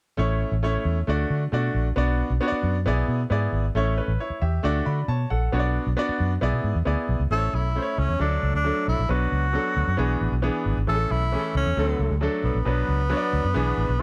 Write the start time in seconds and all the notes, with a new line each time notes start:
0.17 A1 A3 C#4 E4 C#5
0.52 A1
0.63 A3 C#4 E4 C#5
0.85 E2
1.07 D2 A3 D4 F#4 D5
1.30 D3
1.52 B2 A3 D4 F#4 D5
1.75 A#1
1.96 B1 B3 D4 F#4 D5
2.30 B1
2.41 B3 D4 F#4 C#5
2.48 D5
2.52 muted fingered electric bass stroke
2.63 F#2
2.86 B1 B3 E4 G#4 D5
3.08 B2
3.30 G#2 B3 E4 G#4 D5
3.53 G#1
3.75 A1 A3 C#4 E4 C#5
3.98 B4
4.08 A1
4.20 E4 C#5
4.30 muted fingered electric bass stroke
4.42 E2 G4 E5
4.63 D2 A3 D4 F#4 D5
4.86 D3 D5 B5
5.08 B2 C#5 A5
5.30 A#1 A4 F#5
5.52 B1 B3 D4 F#4 C#5
5.60 D5
5.87 B1
5.97 B3 D4 F#4 D5
6.09 muted fingered electric bass stroke
6.20 F#2
6.41 B1 B3 E4 G#4 D5
6.53 B2
6.64 G#2
6.75 E2
6.85 D2 B3 E4 G#4 D5
7.09 B1
7.20 C#2
7.30 A1 A3 C#4 E4 A4 C5
7.38 C#5
7.53 B1 E4
7.75 A3 C#4 E4 C5
7.82 C#5
7.98 C#2 C#4
8.09 E2
8.19 D2 F#3 A3 D4 A4
8.43 C#2
8.54 D2 D4
8.64 F#3 A3 D4 A4
8.88 B1 E4
8.99 A#1
9.08 B1 F#3 B3 D4 F#4 B4
9.32 C#2
9.53 F#3 B3 D4 A4
9.77 D2
9.88 F#2
9.97 B1 E3 B3 D4 G#4
10.21 A1
10.32 B1
10.42 E3 B3 D4 G#4
10.66 G#1
10.77 G#1
10.87 A1 E3 A3 C#4 G#4 A4
10.95 A4
11.11 B1 E4
11.32 E3 A3 C#4 G#4
11.39 A4
11.55 C#2 C#4
11.66 E2
11.77 D2 D3 F#3 A3 A4
11.99 C#2
12.10 D2
12.21 F#3 A3 D4 A4
12.44 B1 B3
12.55 A#1
12.65 B1 F#3 B3 D4 B4
12.89 C#2
13.10 F#3 B3 D4 C#5
13.17 D5
13.33 D2
13.44 F#2
13.54 B1 E3 B3 D4 G#4
13.78 A1
13.89 B1
13.99 E3